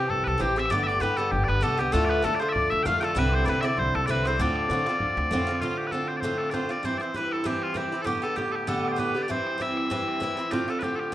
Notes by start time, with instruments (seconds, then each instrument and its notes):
Already playing: bouzouki E3 C4 G4, bagpipes G4
0.08 upright bass C2, bagpipes A4, tin whistle A5, bodhran
0.24 upright bass C2, bagpipes A4 B4, tin whistle A5, bodhran
0.38 upright bass A1, bouzouki G2 E3 C4 G4, bagpipes G4, tin whistle G5, bodhran
0.56 bouzouki E3 C4 G4, bagpipes E5, tin whistle E6, bodhran
0.65 bodhran
0.70 upright bass G1, bouzouki A2 D3 B3 G4, bagpipes D5, tin whistle D6, bodhran
0.80 bagpipes E5, bodhran
0.87 bagpipes D5, tin whistle D6, bodhran
1.00 upright bass G2, bouzouki A2 D3 B3 G4, bagpipes B4, tin whistle B5, bodhran
1.17 bouzouki D3 B3 G4, bagpipes A4, bodhran
1.31 upright bass G1, bagpipes G4, tin whistle G5, bodhran
1.44 bagpipes D5
1.48 upright bass G1, bagpipes B4, tin whistle B5, bodhran
1.61 upright bass C2, bouzouki A2 D3 B3 G4, bagpipes A4, tin whistle A5, bodhran
1.78 bouzouki D3 B3 G4, bagpipes G4, tin whistle G5, bodhran
1.92 upright bass D2, bouzouki A2 D3 A3 F4, bagpipes A4, tin whistle A5, bodhran
2.03 bagpipes D5, bodhran
2.09 bagpipes B4, bodhran
2.22 bouzouki A2 D3 A3 F4, upright bass D3, bagpipes A4, tin whistle A5, bodhran
2.35 bagpipes D5
2.39 bouzouki D3 A3 F4, bagpipes C5, tin whistle C6, bodhran
2.49 bagpipes D5 E5
2.54 upright bass D2, tin whistle D6, bodhran
2.70 upright bass D2, bagpipes E5, tin whistle E6, bodhran
2.83 upright bass F2, bouzouki A2 D3 A3, bagpipes F5 G5, tin whistle F6, bodhran
2.87 bouzouki F4
3.00 bouzouki A3 F4, bagpipes A4 G5, tin whistle A5, bodhran
3.04 bouzouki D3
3.15 upright bass C2, bouzouki G2 D3 C4 E4, bagpipes B4, tin whistle B5, bodhran
3.26 tin whistle D6, bodhran
3.32 bagpipes C5, tin whistle C6, bodhran
3.45 bouzouki G2 D3 C4 E4, upright bass C3, bagpipes D5, tin whistle B5, bodhran
3.49 bagpipes B4
3.61 bouzouki C4 E4, bagpipes D5 E5, tin whistle D6, bodhran
3.65 bouzouki D3
3.77 upright bass C2, bagpipes C5, tin whistle C6, bodhran
3.94 upright bass C2, bagpipes A4, tin whistle A5, bodhran
4.04 bouzouki G2, bagpipes D5, tin whistle B5 C6
4.08 upright bass C2, bouzouki D3 C4 E4, bagpipes B4, bodhran
4.23 bouzouki C4 E4, tin whistle C6, bodhran
4.27 bouzouki D3, bagpipes C5
4.37 upright bass D2, bouzouki A2 D3 C4, tin whistle D6, bodhran
4.41 bouzouki F4, bagpipes D5
4.48 bodhran
4.56 bodhran
4.69 bouzouki A2 D3 C4 F4, upright bass D3, bodhran
4.86 bouzouki C4 F4, bodhran
4.90 bouzouki D3
5.00 upright bass D2, bodhran
5.17 upright bass D2, bodhran
5.31 upright bass F2, bouzouki A2 D3 C4 F4, bodhran
5.47 bouzouki D3 C4 F4, bodhran
5.55 bodhran
5.61 bouzouki A2 D3 C4 F4, bagpipes F4, bodhran
5.77 bagpipes G4
5.87 bagpipes B4
5.91 bouzouki A2 D3 C4 F4, bagpipes A4, bodhran
6.08 bagpipes C5, bodhran
6.16 bagpipes C5 D5
6.22 bouzouki A2 D3 C4 F4, bodhran
6.38 bagpipes A4, bodhran
6.50 bouzouki A2 D3 C4 F4, bagpipes C5 D5, bodhran
6.69 bouzouki D3 C4 F4, bagpipes D5, bodhran
6.83 bouzouki G2 E3 C4 E4, bagpipes C5, bodhran
6.98 bouzouki E4, bagpipes C5 D5, bodhran
7.02 bouzouki E3 C4
7.14 bouzouki G2 E3 C4 E4, bagpipes B4, bodhran
7.31 bagpipes A4, bodhran
7.44 bouzouki G2 E3 C4 E4, bagpipes G4, bodhran
7.62 bagpipes F4, bodhran
7.74 bouzouki G2 E3 C4 E4, bagpipes G4, bodhran
7.92 bouzouki E3 C4 E4
8.02 bouzouki A2 D3, bagpipes G4 A4
8.06 bouzouki B3 G4, bodhran
8.22 bouzouki D3 B3 G4, bagpipes A4, bodhran
8.36 bouzouki A2 D3 B3 G4, bagpipes G4, bodhran
8.52 bagpipes G4 A4, bodhran
8.67 bouzouki A2 D3 B3 G4, bagpipes A4, bodhran
8.85 bagpipes D5, bodhran
8.92 bagpipes C5
8.96 bouzouki A2 D3 B3 G4, bagpipes B4, bodhran
9.15 bouzouki D3 B3 G4, bodhran
9.23 bagpipes D5
9.28 bouzouki G2 E3 C4 E4, bagpipes C5, bodhran
9.47 bodhran
9.58 bouzouki G2 E3 C4 E4, bagpipes E5, bodhran
9.77 bodhran
9.90 bouzouki G2 E3 C4 E4, bodhran
10.08 bodhran
10.20 bouzouki G2 E3 C4 E4, bodhran
10.37 bouzouki E3 C4 E4, bodhran
10.51 bouzouki A2 D3 C4 F4, bagpipes G4, bodhran
10.68 bouzouki D3 C4 F4, bagpipes A4, bodhran
10.79 bouzouki A2 D3 C4, bagpipes B4, bodhran
10.83 bouzouki F4, bagpipes G4
10.96 bagpipes G4 A4, bodhran